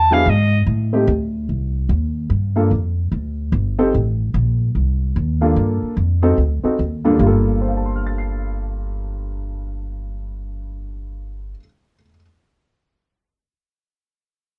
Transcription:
0.00 0.25 E2 medium
0.00 0.15 A5 loud
0.11 0.25 F#3 medium
0.11 0.25 B3 medium
0.11 0.25 D4 medium
0.11 0.25 E4 medium
0.11 0.25 G#4 medium
0.11 0.31 F5 medium
0.26 0.66 G#2 medium
0.26 0.62 D#5 medium
0.67 1.06 A2 medium
0.93 1.06 A3 medium
0.93 1.06 C4 medium
0.93 1.07 D#4 medium
0.93 1.07 G4 medium
1.07 1.47 D2 medium
1.49 1.89 C2 medium
1.89 2.29 D#2 medium
2.30 2.70 G2 medium
2.56 2.69 A#3 medium
2.56 2.69 D4 medium
2.56 2.70 F4 medium
2.56 2.70 A4 medium
2.71 3.11 F2 medium
3.11 3.51 D2 medium
3.52 3.92 G1 medium
3.79 3.92 C4 medium
3.79 3.92 D#4 medium
3.79 3.92 G4 medium
3.79 3.92 A4 medium
3.94 4.34 A1 medium
4.34 4.74 A#1 medium
4.75 5.15 C2 medium
5.16 5.56 D#2 medium
5.41 5.94 A#3 medium
5.41 5.95 D4 medium
5.41 5.94 F4 medium
5.41 5.94 A4 medium
5.56 5.81 G2 medium
5.83 muted upright bass stroke soft
5.97 6.37 F2 medium
6.23 6.36 C4 medium
6.23 6.36 D#4 medium
6.23 6.36 F#4 medium
6.23 6.37 A4 medium
6.38 6.63 D2 medium
6.63 6.77 C4 medium
6.63 6.77 D#4 medium
6.63 6.78 F#4 medium
6.63 6.78 A4 medium
6.63 muted upright bass stroke soft
6.79 7.19 D#2 medium
7.04 7.12 G2 medium
7.04 7.18 A#3 medium
7.04 7.18 D4 medium
7.04 7.18 F4 medium
7.04 7.19 A4 medium
7.14 11.52 G2 medium
7.14 11.55 G3 medium
7.19 11.53 G1 medium
7.19 11.58 A#3 medium
7.19 11.60 F4 medium
7.27 11.64 A4 medium
7.61 11.93 C5 soft
7.68 11.97 F5 soft
7.77 12.01 A5 soft
7.86 12.05 C6 soft
7.96 12.10 F6 soft
8.07 12.16 A6 soft
8.18 12.22 C7 soft

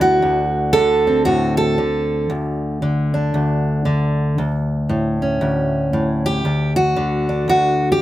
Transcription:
0.00 0.22 D2 medium
0.00 0.74 D3 medium
0.00 0.20 B3 soft
0.00 0.12 D4 medium
0.00 1.05 F#4 loud
0.22 2.28 D2 medium
0.73 1.77 D3 medium
0.73 1.25 A4 loud
1.07 2.28 C4 soft
1.25 1.78 A2 medium
1.25 1.57 F#4 loud
1.57 2.29 A4 loud
1.78 2.81 D3 medium
2.30 3.33 D2 medium
2.82 3.84 D3 medium
3.14 4.35 D4 medium
3.34 4.37 D2 medium
3.85 4.37 D3 medium
4.38 5.40 D2 medium
4.89 5.92 A2 medium
5.22 6.43 C#4 soft
5.41 6.44 D2 medium
5.93 6.45 A2 medium
6.26 6.76 G4 loud
6.45 7.47 D2 medium
6.76 7.48 F#4 loud
6.96 8.00 D3 medium
7.29 8.02 D4 soft
7.48 8.02 D2 medium
7.48 7.91 F#4 loud
7.92 8.02 G4 loud

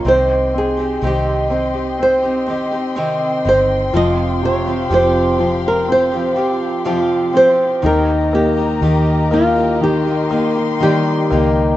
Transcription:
0.05 0.98 C2 medium
0.05 0.78 C3 medium
0.05 0.78 D#3 medium
0.05 0.78 C4 medium
0.05 0.53 C4 medium
0.05 0.77 D#4 medium
0.05 0.76 G4 medium
0.05 0.57 C5 medium
0.05 3.90 D#5 medium
0.05 7.80 G5 medium
0.05 7.80 C6 medium
0.54 1.02 C4 soft
0.54 1.06 G#4 medium
0.77 1.02 C4 soft
0.77 1.02 D#4 soft
0.77 1.02 G4 soft
1.02 3.41 C2 medium
1.02 1.50 C3 medium
1.02 1.49 D#3 medium
1.02 1.50 C4 medium
1.02 1.49 C4 soft
1.02 1.51 D#4 medium
1.02 1.52 G4 medium
1.07 2.04 G4 medium
1.50 1.75 D#3 soft
1.50 1.98 C4 medium
1.50 1.75 C4 soft
1.50 1.74 D#4 medium
1.50 1.73 G4 medium
1.74 2.24 C4 soft
1.74 2.23 D#4 soft
1.74 2.21 G4 soft
1.99 2.46 C4 medium
1.99 3.43 C5 medium
2.22 2.47 C4 soft
2.22 2.48 D#4 soft
2.22 2.47 G4 soft
2.46 2.71 D#3 medium
2.46 2.94 C4 soft
2.46 2.72 C4 soft
2.46 2.71 D#4 medium
2.46 2.70 G4 medium
2.71 2.96 C4 soft
2.71 2.97 D#4 soft
2.71 2.96 G4 soft
2.96 3.45 C3 medium
2.96 3.43 D#3 medium
2.96 3.43 C4 medium
2.96 3.44 C4 medium
2.96 3.45 D#4 medium
2.96 3.46 G4 medium
3.45 3.91 G1 medium
3.45 3.94 D#3 medium
3.45 3.92 C4 soft
3.45 3.93 C4 medium
3.45 3.94 D#4 medium
3.45 3.94 G4 medium
3.49 3.96 C5 medium
3.93 4.87 F1 medium
3.93 4.66 F2 medium
3.93 4.67 C3 medium
3.93 5.37 F3 medium
3.93 4.67 F3 medium
3.93 4.67 C4 medium
3.93 4.66 F4 medium
3.93 4.65 G4 medium
3.93 4.45 D#5 medium
3.93 7.80 F5 medium
4.43 6.33 C3 soft
4.43 4.93 C#5 medium
4.66 4.90 F3 soft
4.66 4.91 C4 soft
4.66 4.91 F4 soft
4.66 4.91 G4 soft
4.90 7.34 F1 medium
4.90 5.40 F2 medium
4.90 5.40 C3 medium
4.90 5.38 F3 medium
4.90 5.39 C4 medium
4.90 5.40 F4 medium
4.90 6.35 G4 medium
4.90 5.41 G4 medium
4.90 5.67 C5 medium
5.39 6.84 F3 medium
5.39 6.13 F3 soft
5.39 6.13 C4 medium
5.39 6.12 F4 medium
5.39 6.10 G4 medium
5.68 5.89 A#4 medium
5.88 7.32 C4 medium
5.92 7.33 C5 medium
6.12 6.35 F3 soft
6.12 6.36 C4 soft
6.12 6.37 F4 soft
6.12 6.37 G4 medium
6.36 6.84 F3 medium
6.36 6.85 C4 medium
6.36 6.85 F4 medium
6.36 7.80 G4 medium
6.36 6.86 G4 medium
6.85 7.34 F2 medium
6.85 7.35 C3 medium
6.85 7.32 F3 medium
6.85 7.81 F3 medium
6.85 7.33 C4 medium
6.85 7.34 F4 medium
6.85 7.35 G4 medium
7.33 7.80 C#2 medium
7.33 7.82 F3 medium
7.33 7.82 C4 medium
7.33 7.83 F4 medium
7.33 7.83 G4 medium
7.33 7.86 C5 medium
7.82 8.78 D#2 medium
7.82 8.57 D#3 medium
7.82 8.81 D#3 medium
7.82 8.57 A#3 medium
7.82 8.58 D#4 medium
7.82 11.77 G4 medium
7.82 8.56 G4 medium
7.82 11.77 A#4 medium
7.82 8.31 A#4 medium
7.82 11.77 D#5 medium
7.82 9.79 A#5 medium
8.33 9.30 A#3 medium
8.33 9.33 G4 medium
8.57 8.81 A#3 soft
8.57 8.82 D#4 soft
8.57 8.82 G4 medium
8.82 11.27 D#2 loud
8.82 9.30 D#3 medium
8.82 9.80 D#3 soft
8.82 9.31 A#3 medium
8.82 9.32 D#4 medium
8.82 9.33 G4 medium
9.31 9.56 D#3 medium
9.31 10.29 A#3 medium
9.31 9.57 A#3 medium
9.31 9.57 D#4 medium
9.31 9.83 F4 medium
9.31 9.55 G4 medium
9.56 10.07 A#3 soft
9.56 10.06 D#4 soft
9.56 10.04 G4 soft
9.81 10.79 D#3 medium
9.81 10.81 G4 medium
9.81 11.77 C6 medium
10.05 10.30 A#3 soft
10.05 10.31 D#4 soft
10.05 10.31 G4 medium
10.30 10.56 D#3 medium
10.30 11.29 A#3 medium
10.30 10.56 A#3 medium
10.30 10.56 D#4 medium
10.30 10.53 G4 medium
10.55 10.80 A#3 soft
10.55 10.81 D#4 soft
10.55 10.81 G4 soft
10.80 11.29 D#3 medium
10.80 11.77 D#3 medium
10.80 11.77 G3 medium
10.80 11.31 A#3 medium
10.80 11.31 D#4 medium
10.80 11.32 G4 medium
10.80 11.77 G4 medium
11.30 11.77 C#2 medium
11.30 11.77 D#3 medium
11.30 11.77 A#3 medium
11.30 11.77 D#4 medium
11.30 11.77 G4 medium

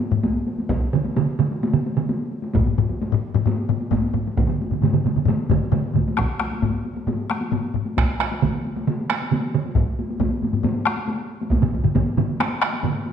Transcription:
0.00 taiko high medium
0.12 taiko low-mid medium
0.12 taiko high medium
0.24 taiko medium
0.24 taiko high medium
0.47 taiko high soft
0.58 taiko high medium
0.69 taiko loud
0.69 taiko high medium
0.93 taiko mid medium
0.93 taiko high medium
1.05 taiko high medium
1.16 taiko mid loud
1.16 taiko high medium
1.39 taiko mid medium
1.39 taiko high medium
1.51 taiko high medium
1.63 taiko high medium
1.73 taiko mid medium
1.86 taiko high medium
1.97 taiko mid medium
1.97 taiko high soft
2.09 taiko high medium
2.31 taiko high soft
2.42 taiko high medium
2.54 taiko loud
2.54 taiko low-mid medium
2.54 taiko high medium
2.66 taiko low-mid medium
2.78 taiko medium
2.78 taiko low-mid medium
2.78 taiko high medium
2.89 taiko high medium
3.02 taiko high medium
3.12 taiko low-mid loud
3.34 taiko low-mid loud
3.34 taiko high medium
3.46 taiko low-mid medium
3.46 taiko high medium
3.69 taiko low-mid loud
3.69 taiko high medium
3.81 taiko high soft
3.91 taiko medium
3.91 taiko low-mid loud
3.91 taiko high medium
4.13 taiko low-mid medium
4.13 taiko high soft
4.27 taiko high medium
4.37 taiko loud
4.37 taiko low-mid medium
4.37 taiko mid medium
4.37 taiko high medium
4.47 taiko low-mid medium
4.47 taiko mid medium
4.61 taiko high medium
4.71 taiko low-mid medium
4.71 taiko mid medium
4.71 taiko high medium
4.82 taiko low-mid medium
4.82 taiko mid medium
4.82 taiko high medium
4.93 taiko low-mid medium
4.93 taiko mid medium
5.04 taiko low-mid medium
5.04 taiko mid medium
5.04 taiko high medium
5.16 taiko low-mid medium
5.16 taiko mid medium
5.25 taiko low-mid medium
5.25 taiko mid medium
5.25 taiko high medium
5.50 taiko medium
5.50 taiko low-mid medium
5.50 taiko mid loud
5.50 taiko high medium
5.63 taiko high soft
5.72 taiko low-mid loud
5.72 taiko mid medium
5.72 taiko high medium
5.94 taiko medium
5.94 taiko low-mid medium
5.94 taiko mid medium
5.94 taiko high soft
6.08 taiko high medium
6.17 taiko rim medium
6.17 taiko medium
6.17 taiko high medium
6.40 taiko rim medium
6.40 taiko high soft
6.52 taiko high medium
6.62 taiko medium
6.62 taiko low-mid medium
6.62 taiko high medium
6.85 taiko high soft
6.97 taiko high medium
7.07 taiko low-mid medium
7.07 taiko high medium
7.30 taiko rim medium
7.30 taiko high medium
7.41 taiko high soft
7.52 taiko low-mid medium
7.52 taiko high medium
7.74 taiko low-mid medium
7.85 taiko high soft
7.97 taiko rim medium
7.97 taiko loud
7.97 taiko high medium
8.20 taiko rim medium
8.20 taiko high soft
8.32 taiko high medium
8.42 taiko medium
8.42 taiko mid medium
8.42 taiko high medium
8.65 taiko high soft
8.77 taiko high medium
8.87 taiko mid medium
8.87 taiko high medium
9.10 taiko rim medium
9.10 taiko high medium
9.22 taiko high medium
9.32 taiko mid medium
9.32 taiko high medium
9.54 taiko mid medium
9.66 taiko high medium
9.75 taiko medium
9.75 taiko low-mid medium
9.75 taiko high medium
9.99 taiko high medium
10.10 taiko high medium
10.20 taiko medium
10.20 taiko low-mid medium
10.20 taiko high medium
10.42 taiko low-mid medium
10.42 taiko high medium
10.53 taiko low-mid medium
10.53 taiko high medium
10.63 taiko low-mid medium
10.63 taiko high medium
10.85 taiko rim medium
10.85 taiko high medium
10.97 taiko high soft
11.08 taiko high medium
11.41 taiko high medium
11.51 taiko medium
11.51 taiko high medium
11.63 taiko low-mid medium
11.63 taiko mid medium
11.73 taiko medium
11.73 taiko high medium
11.84 taiko low-mid medium
11.84 taiko mid medium
11.84 taiko high soft
11.95 taiko medium
11.95 taiko low-mid medium
11.95 taiko mid medium
11.95 taiko high medium
12.17 taiko low-mid medium
12.17 taiko mid medium
12.17 taiko high soft
12.29 taiko high soft
12.40 taiko rim medium
12.40 taiko high medium
12.61 taiko rim medium
12.61 taiko high medium
12.73 taiko high medium
12.83 taiko low-mid medium
12.83 taiko mid medium
12.83 taiko high medium
13.05 taiko high soft

